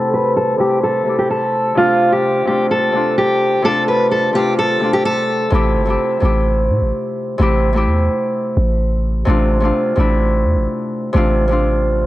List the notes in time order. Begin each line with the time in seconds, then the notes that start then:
Already playing: C3 A3 E4 G4 A4
0.14 B4
0.36 A4
0.58 C3 A3 E4 G4
0.62 G4
0.83 A4
1.05 C3 A3 E4
1.09 G4
1.19 G4
1.30 A4
1.75 C3 A3 D4 F4
1.79 F4
2.12 G4
2.45 C3 A3 D4 G4
2.50 F4
2.71 A4
2.92 C3 A3 D4
2.97 F4
3.18 G4
3.62 C3 A3 D4 A4
3.67 F4
3.88 B4
4.11 A4
4.33 C3 A3 D4 G4
4.37 F4
4.59 A4
4.80 C3 A3 D4
4.84 F4
4.93 G4
5.05 A4
5.50 A1 C3 A3 E4
5.55 G4
5.76 G1
5.85 C3 A3 E4
5.90 G4
6.20 A1 C3 A3 E4
6.25 G4
6.69 A2
6.81 A1
7.38 A1 C3 A3 E4
7.42 G4
7.73 C3 A3 E4
7.77 G4
7.87 E2
8.57 A1
9.25 A1 C3 A3 D4
9.30 F4
9.60 C3 A3 D4
9.65 F4
9.95 A1 C3 A3 D4
10.00 E4
10.45 E2
10.56 A1
11.13 A1 C3 A3 D4
11.17 F4
11.48 C3 A3 D4
11.52 F4